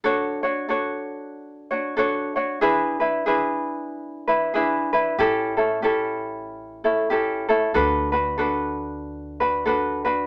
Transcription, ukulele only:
X:1
M:4/4
L:1/8
Q:"Swing" 1/4=94
K:D
V:1 name="Ukulele"
[DFAc] [DFc] [DFAc]3 [DFc] [DFAc] [DFc] | [DE^GB] [DEB] [DEGB]3 [DEB] [DEGB] [DEB] | [CEGA] [CEA] [CEGA]3 [CEA] [CEGA] [CEA] | [DFAB] [DFB] [DFAB]3 [DFB] [DFAB] [DFB] |]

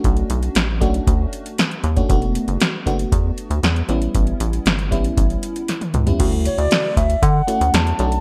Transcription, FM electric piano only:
X:1
M:4/4
L:1/16
Q:1/4=117
K:D
V:1 name="FM electric piano"
[A,CDF]4 z2 [A,CDF]6 z3 [A,CDF] | [A,B,DF]4 z2 [A,B,DF]6 z2 [G,B,CE]2- | [G,B,CE]4 z2 [G,B,CE]6 z3 [G,B,CE] | [C,A,EF]6 z4 [A,CEF]4 [A,CDF]2 |]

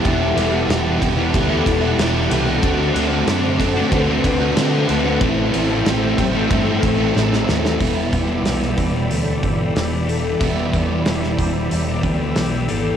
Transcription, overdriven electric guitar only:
X:1
M:4/4
L:1/16
Q:1/4=93
K:Em
V:1 name="Overdriven electric guitar"
[E,G,B,E]2 [E,G,B,E] [G,B,E] [E,G,B,E]2 [E,G,B,E] [G,B,E] [E,G,B,E] [G,B,E]2 [G,B,E] [E,G,B,E]2 [E,G,B,E] [G,B,E] | [D,A,CF]2 [D,A,CF] [A,CF] [D,A,CF]2 [D,A,CF] [A,CF] [D,A,CF] [A,CF]2 [A,CF] [D,A,CF]2 [D,A,CF] [A,CF] | [A,,E,A,CE]2 [E,A,CE] [A,CE] [A,,E,A,CE]2 [E,A,CE] [A,CE] [E,A,CE] [A,CE]2 [A,CE] [A,,E,A,CE]2 [E,A,CE] [A,CE] | [E,G,B,E]16 |
[E,G,B,E]16 |]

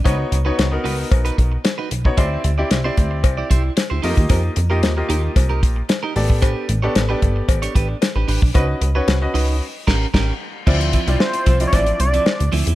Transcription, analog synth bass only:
X:1
M:4/4
L:1/16
Q:1/4=113
K:Aphr
V:1 name="Analog synth bass" clef=bass
^C,,2 C,,2 C,,2 C,,2 =B,,,2 B,,,2 z2 B,,,2 | D,,2 D,,2 C,,2 D,,2 C,,2 C,,2 z D,, F,, _E,, | F,,2 F,,2 _E,,2 E,,2 C,,2 B,,,2 z2 A,,,2- | A,,,2 A,,,2 A,,,2 G,,,2 A,,,2 A,,,2 z A,,, A,,, =B,,, |
^C,,2 C,,2 C,,2 C,,2 z2 A,,,2 A,,,2 z2 | [K:Dm] D,,3 C,, z2 C,,2 A,,,2 C,,2 z D,, D,, E,, |]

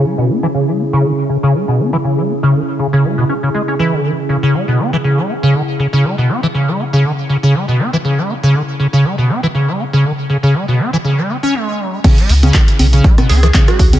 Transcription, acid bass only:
X:1
M:4/4
L:1/16
Q:"Swing 16ths" 1/4=120
K:C#m
V:1 name="Acid bass" clef=bass
G, B,, C E, C, G, C C, D, z C, C, G, B,, C E, | C, G, C C, D, z C, C, G, B,, C C, G, C E, C, | D, z C, C, G, B,, C E, C, G, C C, D, z C, C, | G, B,, C E, C, G, C C, D, z C, C, G, B,, C E, |
C, G, C C, D, z C, C, G, B,, C E, C, G, C C, | D, z C, C, G, B,, C E, C, G, C C G,2 F, G, | C, G, C C, D, z C, C, G, B,, C E, C, G, C C, |]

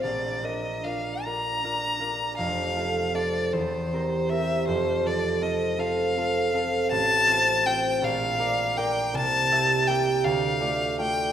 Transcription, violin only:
X:1
M:6/8
L:1/8
Q:3/8=53
K:Fmix
V:1 name="Violin"
d e f b3 | f2 d c2 =e | c d e f3 | [K:F] a2 g f2 g |
a2 g f2 g |]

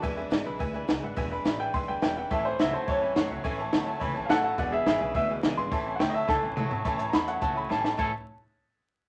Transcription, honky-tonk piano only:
X:1
M:4/4
L:1/8
Q:1/4=211
K:A
V:1 name="Honky-tonk piano"
[Beg] [Beg] [Beg] [Beb] [Beg] [Beg] [Beg] [Bef] | [Beg] [Beb] [Beb] [Beg] [Beg] [Beg] [Beg] [Bef] | [cea] [ceg] [ceg] [cea] [cea] [ceg] [cef] [cef] | [ceg] [cea] [cea] [cea] [ceb] [cea] [cea] [cea] |
[Beg] [Beg] [Beb] [Beg] [Beg] [Beg] [Beg] [Beg] | [cea] [cea] [ceg] [cea] [cea] [cea] [cea] [cea] | [cea] [cea] [cea] [cea] [cef] [ceg] [cea] [cea] | [cea] z6 z |]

